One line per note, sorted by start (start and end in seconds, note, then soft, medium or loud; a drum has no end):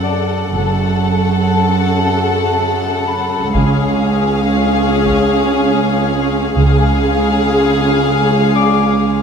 0.00 0.52 F#2 soft
0.00 0.52 C#3 soft
0.00 0.52 A4 soft
0.00 3.59 D5 soft
0.00 0.52 F#5 soft
0.00 2.44 G#5 soft
0.55 1.52 F#1 soft
0.55 3.52 F#2 soft
0.55 3.51 C#3 soft
0.55 3.52 A4 soft
0.55 3.52 F#5 soft
3.07 6.06 B5 soft
3.55 6.51 C#2 soft
3.55 4.51 C#2 soft
3.55 6.52 C#4 soft
3.55 6.52 G#4 soft
3.55 6.52 F5 soft
3.55 taiko soft
4.57 8.47 F5 soft
5.06 taiko soft
6.55 9.22 C#2 soft
6.55 7.52 C#2 soft
6.55 9.22 C#3 soft
6.55 9.22 G#4 soft
6.55 9.22 F5 soft
8.55 9.22 D5 soft
8.55 9.22 D6 soft